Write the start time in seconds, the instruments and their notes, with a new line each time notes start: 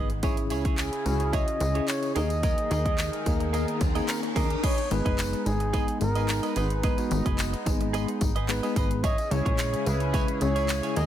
Already playing: analog synth bass G#1, analog synth pad G#3 B3 D#4, clean electric guitar G#4
0.10 muted clean electric guitar stroke, closed hi-hat
0.23 analog synth pad C#3 C#4 E4 G#4, tine electric piano C#4 E4 G#4, clean electric guitar E4 G#4 C#5, kick, closed hi-hat, tambourine, riser
0.37 muted clean electric guitar stroke, closed hi-hat
0.50 analog synth bass C#2, clean electric guitar E4 G#4 C#5, closed hi-hat, tambourine
0.65 clean electric guitar E4 G#4 C#5, kick, closed hi-hat
0.78 flugelhorn G#4, clap, closed hi-hat, tambourine
0.93 muted clean electric guitar stroke, closed hi-hat
1.06 analog synth bass C#2, tine electric piano C#4 E4 F#4, closed hi-hat, tambourine
1.20 muted clean electric guitar stroke, closed hi-hat
1.33 clean electric guitar E4 G#4 C#5, flugelhorn D#5, kick, closed hi-hat, tambourine
1.48 muted clean electric guitar stroke, closed hi-hat
1.60 analog synth bass C#2, muted clean electric guitar stroke, closed hi-hat, tambourine
1.75 tine electric piano C#4 E4 G#4, clean electric guitar E4 G#4 C#5, closed hi-hat
1.88 flugelhorn C#5, muted clean electric guitar stroke, clap, closed hi-hat, tambourine
2.02 muted clean electric guitar stroke, closed hi-hat, tambourine
2.15 analog synth bass D#2, analog synth pad D#3 D#4 A#4, tine electric piano A#3 D#4 G#4, clean electric guitar G#4 A#4 D#5, flugelhorn D#5, closed hi-hat, tambourine
2.30 muted clean electric guitar stroke, closed hi-hat, tambourine
2.43 clean electric guitar G#4 A#4 D#5, kick, closed hi-hat, tambourine
2.58 muted clean electric guitar stroke, closed hi-hat
2.71 analog synth bass D#2, clean electric guitar G#4 A#4 D#5, closed hi-hat, tambourine
2.85 clean electric guitar G#4 A#4 D#5, kick, closed hi-hat
2.98 muted clean electric guitar stroke, clap, closed hi-hat, tambourine
3.13 muted clean electric guitar stroke, closed hi-hat
3.26 analog synth bass D#2, tine electric piano A#3 D#4 G#4, kick, closed hi-hat, tambourine
3.40 muted clean electric guitar stroke, closed hi-hat
3.53 clean electric guitar G#4 A#4 D#5, closed hi-hat, tambourine
3.68 muted clean electric guitar stroke, closed hi-hat
3.81 analog synth bass D#2, muted clean electric guitar stroke, kick, closed hi-hat, tambourine
3.95 tine electric piano A#3 D#4 G#4, clean electric guitar G#4 A#4 D#5, closed hi-hat, tambourine
4.08 flugelhorn A#4, muted clean electric guitar stroke, clap, closed hi-hat, tambourine
4.23 muted clean electric guitar stroke, closed hi-hat
4.36 analog synth bass D#2, clean electric guitar G#4 A#4 D#5, flugelhorn A#4, kick, open hi-hat, tambourine
4.50 muted clean electric guitar stroke, closed hi-hat
4.63 analog synth pad G#3 B3 D#4, clean electric guitar G#4 B4 D#5, flugelhorn C#5, kick, closed hi-hat, crash, tambourine
4.78 muted clean electric guitar stroke, closed hi-hat
4.91 analog synth bass G#1, tine electric piano G#3 B3 D#4 G#4, flugelhorn B4, muted clean electric guitar stroke, closed hi-hat, tambourine
5.05 analog synth bass F#1, clean electric guitar G#4 B4 D#5, kick, closed hi-hat
5.18 muted clean electric guitar stroke, clap, closed hi-hat, tambourine
5.33 muted clean electric guitar stroke, closed hi-hat
5.46 analog synth bass G#1, flugelhorn G#4, closed hi-hat, tambourine
5.60 muted clean electric guitar stroke, closed hi-hat
5.73 tine electric piano G#3 B3 D#4 G#4, clean electric guitar G#4 B4 D#5, kick, closed hi-hat, tambourine
5.88 muted clean electric guitar stroke, closed hi-hat
6.01 analog synth bass G#1, flugelhorn A#4, muted clean electric guitar stroke, closed hi-hat, tambourine
6.15 clean electric guitar G#4 B4 D#5, closed hi-hat, tambourine
6.29 clap, closed hi-hat, tambourine
6.43 clean electric guitar G#4 B4 D#5, closed hi-hat, tambourine
6.56 analog synth bass G#1, clean electric guitar G#4 B4 D#5, flugelhorn B4, closed hi-hat, tambourine
6.70 closed hi-hat
6.83 tine electric piano G#3 B3 D#4 G#4, clean electric guitar G#4 B4 D#5, kick, closed hi-hat, tambourine
6.98 tine electric piano G#3 B3 D#4 F#4, muted clean electric guitar stroke, closed hi-hat, tambourine
7.11 analog synth bass G#1, muted clean electric guitar stroke, closed hi-hat, tambourine
7.26 analog synth bass F#1, clean electric guitar G#4 B4 D#5, kick, closed hi-hat
7.38 muted clean electric guitar stroke, clap, closed hi-hat, tambourine
7.53 muted clean electric guitar stroke, closed hi-hat
7.66 analog synth bass G#1, tine electric piano G#3 B3 D#4 G#4, kick, closed hi-hat, tambourine
7.81 muted clean electric guitar stroke, closed hi-hat
7.93 clean electric guitar G#4 B4 D#5, closed hi-hat, tambourine
8.08 muted clean electric guitar stroke, closed hi-hat
8.21 analog synth bass G#1, muted clean electric guitar stroke, kick, closed hi-hat, tambourine
8.36 clean electric guitar G#4 B4 D#5, closed hi-hat
8.48 tine electric piano G#3 B3 D#4 G#4, flugelhorn B4, muted clean electric guitar stroke, clap, closed hi-hat, tambourine
8.63 tine electric piano G#3 B3 D#4 G#4, clean electric guitar G#4 B4 D#5, closed hi-hat, tambourine
8.76 analog synth bass G#1, clean electric guitar G#4 B4 D#5, flugelhorn B4, kick, closed hi-hat, tambourine
8.91 muted clean electric guitar stroke, closed hi-hat
9.04 analog synth pad C#3 C#4 E4 G#4, clean electric guitar E4 G#4 C#5, flugelhorn D#5, kick, closed hi-hat, tambourine
9.18 muted clean electric guitar stroke, closed hi-hat, tambourine
9.31 analog synth bass C#2, tine electric piano G#3 C#4 E4 G#4, flugelhorn C#5, muted clean electric guitar stroke, closed hi-hat, tambourine
9.46 analog synth bass A#1, clean electric guitar E4 G#4 C#5, kick, closed hi-hat
9.59 muted clean electric guitar stroke, clap, closed hi-hat, tambourine
9.73 muted clean electric guitar stroke, closed hi-hat
9.86 analog synth bass C#2, flugelhorn B4, closed hi-hat, tambourine
10.00 muted clean electric guitar stroke, closed hi-hat
10.13 tine electric piano G#3 C#4 E4 G#4, clean electric guitar E4 G#4 C#5, kick, closed hi-hat, tambourine
10.28 muted clean electric guitar stroke, closed hi-hat
10.41 analog synth bass C#2, flugelhorn C#5, muted clean electric guitar stroke, closed hi-hat, tambourine
10.56 clean electric guitar E4 G#4 C#5, closed hi-hat, tambourine
10.69 clap, closed hi-hat, tambourine
10.83 clean electric guitar E4 G#4 C#5, closed hi-hat, tambourine
10.96 analog synth bass D#2, analog synth pad D#3 D#4 A#4, tine electric piano G#3 A#3 D#4 G#4, clean electric guitar G#4 A#4 D#5, flugelhorn D#5, closed hi-hat, tambourine